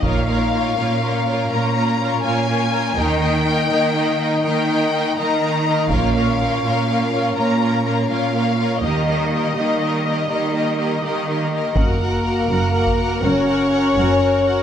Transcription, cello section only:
X:1
M:12/8
L:1/8
Q:3/8=82
K:F#
V:1 name="Cello section" clef=bass
A,,3 A,,3 A,,3 A,,3 | D,3 D,3 D,3 D,3 | A,,3 A,,3 A,,3 A,,3 | D,3 D,3 D,3 D,3 |
F,,3 F,,3 F,,3 F,,3 |]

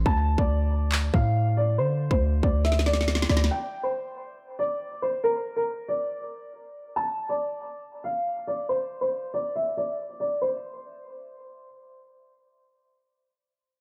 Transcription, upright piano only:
X:1
M:4/4
L:1/16
Q:1/4=139
K:Dm
V:1 name="Upright piano"
a3 d4- d z2 f4 d2 | c3 c3 d2 e2 d4 d2 | g3 c4- c z2 d4 c2 | B3 B3 d8- d2 |
a3 d4- d z2 f4 d2 | c3 c3 d2 e2 d4 d2 | c12 z4 | z16 |]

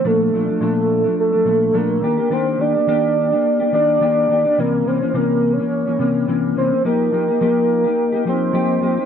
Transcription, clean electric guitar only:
X:1
M:4/4
L:1/16
Q:"Swing 16ths" 1/4=106
K:Bb
V:1 name="Clean electric guitar"
[B,,F,A,D]2 [B,,F,A,D] [F,A,D] [B,,F,A,D]3 [F,A,D]2 [F,A,D] [B,,F,A,D]2 [B,,F,A,D]2 [E,B,DG] [B,DG] | [E,B,DG]2 [E,B,DG] [B,DG] [E,B,DG]3 [B,DG]2 [B,DG] [E,B,DG]2 [E,B,DG]2 [E,B,DG] [B,DG] | [C,=E,B,_D]2 [C,E,B,D] [E,B,D] [C,E,B,D]3 [E,B,D]2 [E,B,D] [C,E,B,D]2 [C,E,B,D]2 [C,E,B,D] [E,B,D] | [F,B,EG]2 [F,B,EG] [B,EG] [F,B,EG]3 [B,EG]2 [B,EG] [F,B,EG]2 [F,B,EG]2 [F,B,EG] [B,EG] |]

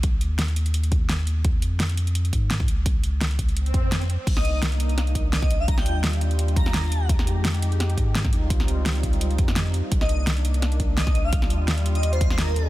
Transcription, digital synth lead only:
X:1
M:4/4
L:1/16
Q:"Swing 16ths" 1/4=170
K:Cm
V:1 name="Digital synth lead"
z16 | z16 | z16 | z e2 z8 z e2 z f |
b g2 z6 z b6 | z16 | z16 | z e2 z8 z e2 z f |
z6 z e2 c2 c B4 |]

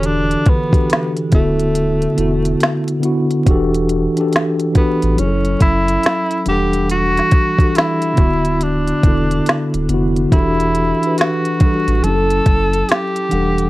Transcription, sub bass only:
X:1
M:4/4
L:1/16
Q:"Swing 16ths" 1/4=70
K:Edor
V:1 name="Sub bass" clef=bass
E,,,2 z4 D,,,4 E,,,2 z4 | E,,,3 z4 A,,, F,,,2 F,,,2 z2 E,,,2- | E,,,2 z4 D,,,4 E,,,2 z D,,, =F,,,2 | E,,,3 z4 A,,, F,,,2 F,,,2 z2 E,,,2 |]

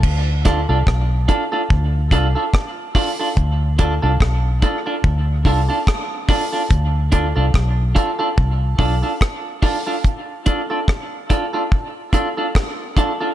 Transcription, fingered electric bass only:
X:1
M:4/4
L:1/16
Q:"Swing 16ths" 1/4=72
K:Ddor
V:1 name="Fingered electric bass" clef=bass
D,,3 C,, B,,,2 z2 D,,2 C,, z4 z | D,,3 C,, B,,,2 z2 D,,2 C,, z4 z | D,,3 C,, B,,,2 z2 C,,2 B,,, z4 z | z16 |]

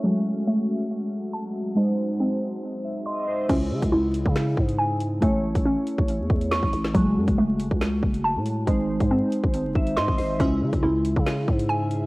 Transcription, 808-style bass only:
X:1
M:4/4
L:1/16
Q:1/4=139
K:C#m
V:1 name="808-style bass" clef=bass
z16 | z16 | C,,2 C, C,, C,,3 C,3 G,,6 | A,,,3 A,,,2 z2 A,,,2 E,, E,,3 A,,, A,,,2 |
F,,,2 F,, F,,, F,,,3 C,,3 F,,,3 A,,3 | G,,,3 G,,2 z2 G,,,2 F,,, G,,,2 G,, G,,, G,,,2 | C,,2 C, C,, C,,3 C,3 G,,6 |]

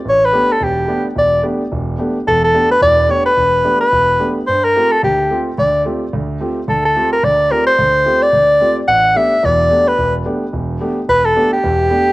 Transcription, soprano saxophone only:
X:1
M:4/4
L:1/8
Q:"Swing" 1/4=218
K:Aphr
V:1 name="Soprano saxophone"
^c =B2 A G3 z | d2 z6 | A A2 =B d2 ^c B- | =B3 B4 z |
c B2 A G3 z | d2 z6 | A A2 B d2 B c- | c3 d4 z |
^f2 e2 d3 =B- | =B z6 z | =B A2 G4- G |]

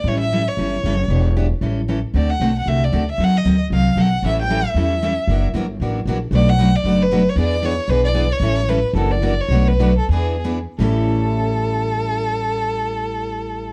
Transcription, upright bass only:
X:1
M:4/4
L:1/8
Q:"Swing" 1/4=229
K:Amix
V:1 name="Upright bass" clef=bass
A,,,4 G,,,2 F,,,2 | E,,,4 A,,,4 | D,,2 B,,,2 =C,,2 D,,2 | ^D,,2 =D,,2 ^B,,,2 =B,,,2 |
A,,,4 E,,4 | F,,,2 G,,,2 A,,,2 ^A,,,2 | B,,,4 F,,,4 | E,,4 B,,,4 |
A,,,4 F,,,4 | B,,,4 E,,4 | A,,,8- | A,,,8 |]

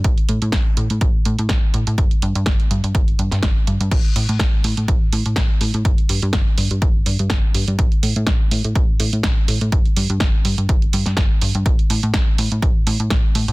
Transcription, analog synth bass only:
X:1
M:4/4
L:1/16
Q:"Swing 16ths" 1/4=124
K:G
V:1 name="Analog synth bass" clef=bass
A,,, z A,, A,, A,,, z A,, A,, A,,,2 A,, A,, A,,, z A,, A,, | G,,, G,, G,, G,, G,,, z G,, G,, G,,,2 G,, G,, G,,, z G,, G,, | A,,, z A,, A,, A,,, z A,, A,, A,,,2 A,, A,, A,,, z A,, A,, | G,,, G,, G,, G,, G,,, z G,, G,, G,,,2 G,, G,, G,,, z G,, G,, |
A,,, z A,, A,, A,,, z A,, A,, A,,,2 A,, A,, A,,, z A,, A,, | G,,, G,, G,, G,, G,,, z G,, G,, G,,,2 G,, G,, G,,, z G,, G,, | A,,, z A,, A,, A,,, z A,, A,, A,,,2 A,, A,, A,,, z A,, A,, |]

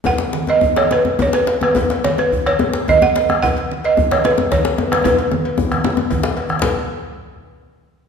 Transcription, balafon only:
X:1
M:12/8
L:1/8
Q:3/8=148
K:B
V:1 name="Balafon"
f3 d2 c B2 c B2 B- | B2 c B2 c2 z d f2 z | f3 d2 c B2 c3 B | B8- B2 z2 |
z12 |]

